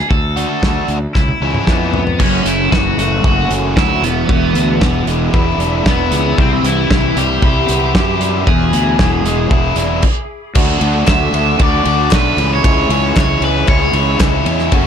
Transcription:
0.10 D2 A4, kick
0.36 D3 A3 D4 F#4, closed hi-hat
0.62 D2 D3 A3 D4 F#4, kick, snare
0.88 D2, closed hi-hat
1.14 C#2 E4, kick, snare
1.29 high tom
1.40 C#2 E3 G#3 C#4 E4
1.54 mid tom
1.67 F2 E3 G#3 B3 C#4 E4, kick, snare
1.93 floor tom
2.07 floor tom
2.19 F#1 F#2 C#4 A4 E5 F#5 C#6, kick, crash
2.45 F#1 C#3 E4, closed hi-hat
2.72 F#1 E3 F#4, kick, snare
2.97 F#1 A3 F#4, snare, closed hi-hat
3.24 F#1 F#4, kick
3.50 F#1 C#4, closed hi-hat
3.77 D2 E4 F#4, kick, snare
4.02 E1 E2 B3 G#4 B5 D6, closed hi-hat
4.29 E1 E2, kick
4.54 D2 B2, closed hi-hat
4.81 E1 E3, kick, snare
5.07 E1 G#3, closed hi-hat
5.33 E1 E4, kick
5.58 E1 D4, closed hi-hat
5.85 E1 E4, kick, snare
5.90 B3
6.11 C#2 G#3, closed hi-hat
6.38 C2 C3 C4 G4 B5 C6, kick
6.63 C2 E3 E4, closed hi-hat
6.90 C2 E3, kick, snare
7.16 C2 G3 G4, snare, closed hi-hat
7.42 C2 E4, kick
7.68 C2 B3, closed hi-hat
7.94 F#2 E4, kick, snare
8.20 G3, closed hi-hat
8.44 E1 E2 G#4 B5 D6, kick
8.72 D2 B2, closed hi-hat
8.99 E1 E3, kick, snare
9.25 E1 G#3, snare, closed hi-hat
9.50 E1 E4, kick
9.76 E1 D4, closed hi-hat
10.02 kick, crash
10.55 D2 D3 A3 D4 F#4 A4 D5 F#5 D6, kick, crash
10.81 D2 D3 A3 D4 F#4, ride
11.07 D3 A3 D4 F#4 E5, kick, snare, clap, ride
11.33 D2 D3 A3 D4 F#4, ride
11.59 D2 D3 A3 D4 F#4 D5, kick, ride
11.85 D2 D3 A3 D4 F#4, ride
12.11 B1 D3 A3 D4 F#4 B4, kick, snare, clap, ride
12.37 C#2 C#3 E3 G#3 C#4 E4 G#4 C#5 E5 C#6, ride
12.54 C#5
12.64 C#2 C#3 E3 G#3 C#4 E4, kick, ride
12.89 C#2 C#3 E3 G#3 C#4 E4, ride
13.16 C#2 C#3 E3 G#3 C#4 E4 C#5, kick, snare, clap, ride
13.41 C#2 C#3 E3 G#3 C#4 E4 B4, ride
13.67 C#2 C#3 E3 G#3 C#4 E4 C#5, kick, ride
13.93 C#2 C#3 E3 G#3 C#4 E4, ride
14.19 C#2 C#3 E3 G#3 C#4 E4, kick, snare, clap, ride
14.45 E2 C#3 E3 G#3 C#4 E4, ride
14.59 snare
14.71 F#1 F#2 C#3 F#3 A3 C#4 F#4 A4 F#5, kick, ride

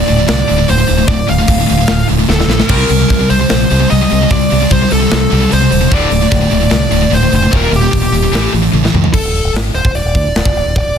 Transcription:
Already playing: D5
0.06 D1 D2 A2, open hi-hat
0.16 D2 A2
0.27 C2 D2 A2 D5, snare, open hi-hat
0.48 D1 D2 A2, open hi-hat
0.57 D2 A2
0.68 D1 D2 A2 C5, open hi-hat
0.77 D2 A2
0.87 D1 D2 A2, open hi-hat
0.97 D2 A2
1.07 D1 D2 A2 D5, kick, open hi-hat
1.27 D1 D2 A2 F5, open hi-hat
1.38 D2 A2
1.48 D1 D2 A2, kick, open hi-hat
1.58 D2 A2
1.66 D2 A2, open hi-hat
1.71 D1
1.78 D2 A2
1.87 D1 D2 A2, snare, open hi-hat
2.08 D1 D2 A2, open hi-hat
2.18 D2 A2
2.28 D1 D2 A2 A4, snare
2.38 D2 A2, snare
2.48 A#1 D2 A2, snare
2.58 D2 A2, snare
2.68 C2 C3 G3 C4 A#4, kick, open hi-hat, crash
2.89 C2 C3 G3, open hi-hat
2.99 C3 G3
3.08 C2 C3 G3, kick, snare, open hi-hat
3.19 C3 G3
3.29 C2 C3 G3 C5, open hi-hat
3.40 C3 G3
3.49 A#1 C3 G3, snare, open hi-hat
3.70 C2 C3 G3, open hi-hat
3.80 C3 G3
3.90 C2 C3 G3 D#5, open hi-hat
4.01 C3 G3
4.10 C2 C3 G3, open hi-hat
4.22 C3 G3
4.30 C2 C3 G3 D5, kick, open hi-hat
4.51 C2 C3 G3, open hi-hat
4.62 C3 G3
4.70 C2 C3 G3 C5, kick, open hi-hat
4.82 C3 G3
4.91 C2 C3 G3 A4, open hi-hat
5.02 C3 G3
5.11 C2 C3 G3, snare, open hi-hat
5.32 C2 C3 G3, open hi-hat
5.43 C3 G3
5.49 C2 C3 G3, open hi-hat
5.54 C5
5.61 C3 G3
5.70 D#1 C3 G3, open hi-hat
5.80 C3 G3
5.90 D1 D2 A2 D3 D5, kick, open hi-hat
6.11 D1 D2 A2, open hi-hat
6.22 D2 A2
6.31 D1 D2 A2, kick, snare, open hi-hat
6.41 D2 A2
6.51 D1 D2 A2 D5, open hi-hat
6.61 D2 A2
6.70 C2 D2 A2, snare, open hi-hat
6.91 D1 D2 A2, open hi-hat
7.02 D2 A2
7.11 D1 D2 A2 C5, open hi-hat
7.23 D2 A2
7.32 F1 D2 A2 C5, open hi-hat
7.43 D2 A2
7.51 D#1 D#2 A#2 D#3, kick, open hi-hat
7.56 A#4
7.70 D#1 D#2 A#2, open hi-hat
7.76 G4
7.81 D#2 A#2
7.91 D#1 D#2 A#2, kick, open hi-hat
8.02 D#2 A#2
8.12 D#1 D#2 A#2, open hi-hat
8.23 D#2 A#2
8.31 A1 A2 E3 A3, snare, open hi-hat
8.53 A1 A2 E3, open hi-hat
8.62 A2 E3
8.72 A1 A2 E3, high tom
8.84 A2 E3, snare
8.94 C#2 A2 E3, mid tom
9.04 A2 E3, floor tom
9.14 D1 A4, kick, crash
9.24 D1
9.35 open hi-hat
9.44 D1
9.54 G#1, snare, open hi-hat
9.74 D1 C5, open hi-hat
9.85 D1, kick
9.95 D1 D5, open hi-hat
10.05 D1
10.15 D2, kick, open hi-hat
10.27 D1
10.35 D1, snare, open hi-hat
10.45 F1, kick
10.56 D1, open hi-hat
10.65 D1
10.76 D1 D5, kick, open hi-hat
10.86 D1

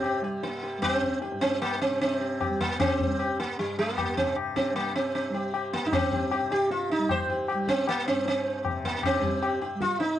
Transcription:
Already playing: G2 C3 G3 C4
0.02 G4, tabla na
0.21 G3 G4, tabla te
0.43 A#3, tabla te
0.63 G4, tabla te
0.78 G3
0.82 C4, tabla na, tabla ge
1.02 tabla ge
1.22 G4, tabla te
1.32 G2, tabla te
1.41 C4, tabla ke
1.52 tabla te
1.62 A#3, tabla na
1.81 C4, tabla te
1.91 C3
2.01 C4, tabla te
2.21 G4, tabla te
2.40 G4, tabla na, tabla ge
2.49 G3
2.60 A#3, tabla ge
2.80 C4, tabla na, tabla ge
3.00 tabla ge
3.04 G3
3.19 G4, tabla na
3.40 A#3, tabla te
3.59 G2 G3, tabla te
3.78 A#3, tabla te
3.98 G4, tabla na, tabla ge
4.16 C3 C4, tabla ge
4.36 tabla na
4.56 C4, tabla ke
4.72 G3 A#3, tabla na
4.96 C4, tabla te
5.15 C4, tabla te
5.29 G3
5.34 G4, tabla te
5.54 G4, tabla na
5.73 A#3, tabla ke
5.84 G2 D#4
5.93 C4, tabla na, tabla ge
6.12 G4, tabla ge
6.31 G4, tabla na
6.42 C3
6.51 G4, tabla te
6.71 F4, tabla te
6.90 D#4, tabla te
6.98 G3
7.09 C5, tabla na, tabla ge
7.29 G4, tabla ge
7.48 G4, tabla na
7.54 G3
7.68 C4, tabla ke
7.87 A#3, tabla na
8.06 G2 C4, tabla te
8.26 C4, tabla te
8.46 tabla te
8.64 C3, tabla na, tabla ge
8.84 A#3, tabla ge
9.03 C4, tabla na, tabla ge
9.20 G3 G4, tabla ge
9.42 G4, tabla na
9.61 G4, tabla te
9.75 G3
9.81 F4, tabla ke
10.00 D#4, tabla te

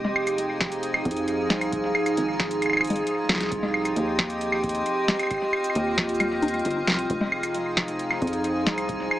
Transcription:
Already playing: F1 F3 D#4 G#4
0.05 low conga
0.16 claves
0.27 closed hi-hat, cabasa, claves
0.38 closed hi-hat
0.60 kick, snare, closed hi-hat
0.72 closed hi-hat, cabasa
0.83 closed hi-hat
0.94 claves
1.05 F2, kick, closed hi-hat
1.11 closed hi-hat
1.17 closed hi-hat
1.28 closed hi-hat
1.50 C2, snare, closed hi-hat, low conga, cabasa
1.61 closed hi-hat, claves
1.72 kick, closed hi-hat
1.95 claves
2.06 closed hi-hat, cabasa, claves
2.17 G#1, closed hi-hat
2.40 kick, snare, closed hi-hat
2.51 closed hi-hat, cabasa
2.62 closed hi-hat, claves
2.66 claves
2.70 claves
2.73 claves
2.77 claves
2.81 closed hi-hat, claves
2.87 closed hi-hat
2.90 closed hi-hat, low conga
2.93 closed hi-hat
2.96 closed hi-hat
3.07 closed hi-hat
3.29 C2, snare, closed hi-hat
3.32 snare
3.35 snare
3.38 snare
3.40 snare, closed hi-hat
3.43 snare
3.46 snare
3.49 C4 G4 D#5, kick, snare, closed hi-hat
3.63 low conga
3.74 claves
3.85 closed hi-hat, cabasa, claves
3.96 D#2, closed hi-hat
4.19 kick, snare, closed hi-hat
4.30 closed hi-hat, cabasa
4.41 closed hi-hat
4.52 claves
4.63 kick, closed hi-hat
4.69 closed hi-hat
4.75 closed hi-hat
4.86 closed hi-hat
5.08 snare, closed hi-hat, low conga, cabasa
5.19 closed hi-hat, claves
5.23 claves
5.27 closed hi-hat, claves
5.31 F4, kick, claves
5.34 claves
5.38 claves
5.53 claves
5.64 closed hi-hat, cabasa
5.70 claves
5.75 D#2, closed hi-hat
5.98 kick, snare, closed hi-hat
6.09 closed hi-hat
6.14 cabasa
6.20 closed hi-hat, low conga, claves
6.42 closed hi-hat, low conga
6.48 closed hi-hat
6.54 closed hi-hat
6.59 closed hi-hat
6.65 G1, closed hi-hat
6.71 closed hi-hat
6.87 C2, snare, closed hi-hat
6.90 snare
6.92 snare
6.94 snare
6.96 snare, closed hi-hat
7.10 F1 F3 D#4 G#4, kick, closed hi-hat
7.21 low conga
7.32 claves
7.43 closed hi-hat, cabasa, claves
7.54 closed hi-hat
7.77 kick, snare, closed hi-hat
7.88 closed hi-hat, cabasa
7.99 closed hi-hat
8.11 claves
8.22 F2, kick, closed hi-hat
8.27 closed hi-hat
8.33 closed hi-hat
8.44 closed hi-hat
8.66 C2, snare, closed hi-hat, low conga, cabasa
8.78 closed hi-hat, claves
8.89 kick, closed hi-hat
9.11 claves

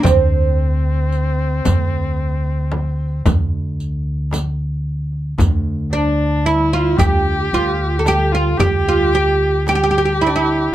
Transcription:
0.03 D2 C4, riq, darbuka dum, frame drum
1.12 riq, darbuka ka
1.65 D2, riq, frame drum, darbuka dum
2.72 darbuka tek, frame drum
3.26 D2, riq, darbuka dum, frame drum
3.79 riq, darbuka ka
4.31 riq, darbuka tek, frame drum
5.12 darbuka ka
5.38 D2, riq, darbuka dum, frame drum
5.92 D4
6.45 E4, riq
6.73 F4
6.98 D2 G4, riq, darbuka dum, frame drum
7.53 D2 F4
7.99 A4
8.05 G4, riq, darbuka tek, frame drum
8.32 F4
8.58 D2 G4, riq, darbuka dum, frame drum
8.89 F4
9.13 G4, riq, darbuka ka
9.67 G4, riq, darbuka tek, frame drum
9.75 G4
9.84 G4
9.91 G4
9.98 G4
10.05 G4
10.21 E4
10.27 D4
10.36 E4

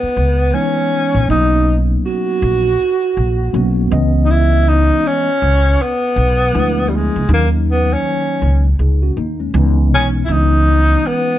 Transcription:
Already playing: B3
0.03 muted upright bass stroke
0.17 C#2
0.53 E3 G#3 B3 C#4 D#4
1.15 A#1
1.28 B1 F#3 A#3 B3 C#4 D#4
2.06 F#4
2.42 A#1
3.17 A#1
3.53 B1 F#3 A#3 B3 C#4 F#4
3.90 C#2 E3 G#3 B3 C#4 D#5
4.25 D#4
4.31 E4
4.68 D#4
5.07 C#4
5.42 C#2
5.82 B3
6.16 B1
6.53 D2 F3 G#3 B3 D4 E4
6.89 G3
6.96 G#3
7.16 C#2
7.29 D#2 D#3 F#3 A#3 C#4 D#4
7.34 A#3
7.71 B3
7.93 C#4
8.42 C#2
8.79 C#2 D#4 G#4
9.03 C#4 F#4
9.17 D#2 A#3 D#4
9.40 G#3 C#4
9.54 C#2 E3 G#3 B3 C#4 D#4
9.91 B1 C#4
10.25 C#2 E3 E4
10.29 G#3 B3 C#4 D4 D#4
10.37 D#4
11.07 B3

